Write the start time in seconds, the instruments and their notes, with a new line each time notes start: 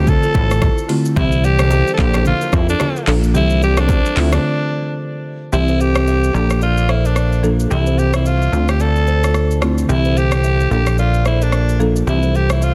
Already playing: analog synth bass D2, alto saxophone G4
0.07 alto saxophone A4, kick, low conga, shaker
0.23 kalimba F4 A4, shaker
0.34 analog synth bass A1, kick, low bongo, shaker
0.51 kalimba E4 G4, cross-stick, shaker
0.62 kick, cross-stick, high bongo, low conga, shaker
0.78 shaker
0.89 marimba D3 A3 C4 F4, kalimba E4 G4, open hi-hat, shaker
1.05 shaker
1.16 analog synth bass C2, marimba E3 G3 C4 G4, alto saxophone E4, kalimba C5 E5, kick, low conga, shaker
1.32 shaker
1.44 alto saxophone G4, kalimba A#4 D5, shaker
1.59 kalimba A4 C5, cross-stick, low bongo, shaker
1.71 kalimba G4 C5, high bongo, shaker
1.87 shaker
1.93 alto saxophone A4
1.98 analog synth bass A#1, marimba F3 A#3 D4 A4, alto saxophone G4, kick, clap, shaker
2.14 cross-stick, low bongo, shaker
2.25 alto saxophone F4, low conga, shaker
2.41 kalimba G4 A#4, shaker
2.52 analog synth bass F2, alto saxophone E4, kick, cross-stick, low bongo, shaker
2.69 alto saxophone D4, kalimba F4 A4, shaker
2.80 cross-stick, high bongo, low conga, shaker
2.96 shaker
3.07 analog synth bass A#1, marimba F3 A#3 D4 A4, kalimba F4 A4, clap, open hi-hat, shaker
3.23 shaker
3.34 analog synth bass C2, marimba E3 G3 C4 G4, alto saxophone E4, kalimba C5 E5, low conga, shaker
3.50 shaker
3.62 alto saxophone G4, kalimba A#4 D5, shaker
3.77 alto saxophone D4, kalimba A4 C5, cross-stick, low bongo, shaker
3.89 kalimba G4 C5, kick, high bongo, shaker
4.06 shaker
4.16 analog synth bass D2, marimba D3 A3 C4 F4, alto saxophone E4, clap, open hi-hat, shaker
4.32 alto saxophone D4, cross-stick, low bongo, shaker
5.52 analog synth bass C2, marimba E3 G3 C4 G4, alto saxophone E4, shaker
5.68 kalimba A4 C5, shaker
5.80 alto saxophone G4, kalimba A4 C5, shaker
5.95 cross-stick, shaker
6.07 kalimba C5 E5, shaker
6.24 shaker
6.34 analog synth bass A#1, marimba F3 A#3 D4 A4, alto saxophone G4, shaker
6.50 cross-stick, shaker
6.61 alto saxophone F4, kalimba A#4 D5, shaker
6.77 shaker
6.89 alto saxophone E4, kalimba A4 C5, cross-stick, shaker
7.05 alto saxophone D4, kalimba G4 A#4, shaker
7.16 cross-stick, shaker
7.32 shaker
7.43 marimba F3 A#3 D4 A4, kalimba F4 A4, shaker
7.60 shaker
7.70 analog synth bass C2, marimba E3 G3 C4 G4, alto saxophone E4, shaker
7.86 kalimba A4 C5, shaker
7.98 alto saxophone G4, kalimba A4 C5, shaker
8.13 alto saxophone E4, cross-stick, shaker
8.26 alto saxophone F4, kalimba C5 E5, shaker
8.42 shaker
8.52 analog synth bass D2, marimba D3 A3 C4 F4, shaker
8.68 alto saxophone G4, cross-stick, shaker
8.80 alto saxophone A4, kalimba A4 D5, shaker
8.96 shaker
9.07 kalimba A4 C5, shaker
9.24 kalimba F4 A4, cross-stick, shaker
9.34 cross-stick, shaker
9.51 shaker
9.61 marimba D3 A3 C4 F4, kalimba E4 G4, cross-stick, shaker
9.78 shaker
9.89 analog synth bass C2, marimba E3 G3 C4 G4, alto saxophone E4, shaker
10.05 kalimba A4 C5, shaker
10.17 alto saxophone G4, kalimba A4 C5, shaker
10.32 cross-stick, shaker
10.44 kalimba C5 E5, shaker
10.60 shaker
10.71 analog synth bass A#1, marimba F3 A#3 D4 A4, alto saxophone G4, shaker
10.86 cross-stick, shaker
10.98 alto saxophone F4, kalimba A#4 D5, shaker
11.14 shaker
11.25 alto saxophone E4, kalimba A4 C5, cross-stick, shaker
11.42 alto saxophone D4, kalimba G4 A#4, shaker
11.52 cross-stick, shaker
11.69 shaker
11.80 marimba F3 A#3 D4 A4, kalimba F4 A4, shaker
11.96 shaker
12.07 analog synth bass C2, marimba E3 G3 C4 G4, alto saxophone E4, shaker
12.23 kalimba A4 C5, shaker
12.35 alto saxophone G4, kalimba A4 C5, shaker
12.50 alto saxophone E4, cross-stick, shaker
12.62 alto saxophone F4, kalimba C5 E5, shaker